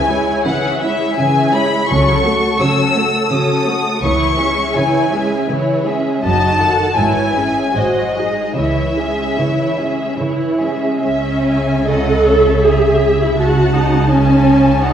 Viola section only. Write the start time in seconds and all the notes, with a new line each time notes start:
0.10 G#3 E4
0.46 E3 C#4
0.82 G#3 E4
1.19 E3 C#4
1.54 G#3 E4
1.90 F#3 C#4
2.26 A3
2.61 F#3 C#4
2.96 A3
3.32 F#3 C#4
3.66 A3
4.04 E3 E4
4.41 G#3 C#4
4.77 E3 E4
5.14 G#3 C#4
5.50 E3 E4
5.87 G#3 C#4
6.25 F#3 D#4
6.62 D#3 F#4
6.98 E3 E4
7.36 G#3 C#4
7.76 F#3 F#4
8.17 G#3 D#4
8.57 E3 E4
8.99 G#3 C#4
9.39 E3 E4
9.80 G#3 C#4
10.20 E3 E4
10.62 G#3 C#4
11.03 C#4
11.89 A4
12.66 G#4
13.23 E4
13.39 F#4
13.76 D#4
14.11 C#4
14.83 D#4